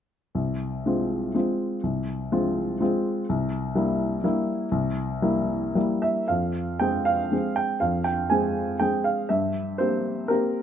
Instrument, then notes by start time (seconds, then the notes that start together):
grand piano
0.35 C2
0.86 G#3 C4 F4
1.34 G#3 C4 F4
1.83 C2
2.32 G#3 C4 F4
2.80 G#3 C4 F4
3.29 C2
3.75 G3 A#3 E4
4.24 G3 A#3 E4
4.71 C2
5.22 G3 A#3 E4
5.75 G3 A#3 E4
6.02 E5
6.28 F2 F5
6.80 G#3 C4 G#4 G5
7.05 F5
7.32 G#3 C4 G#4
7.56 G5
7.80 F2 F5
8.04 G5
8.30 G#3 C4 G#4 G#5
8.80 G#3 C4 G#4 G5
9.04 F5
9.29 G2 E5
9.78 A#3 C4 G4 C5
10.28 A#3 C4 G4 A#4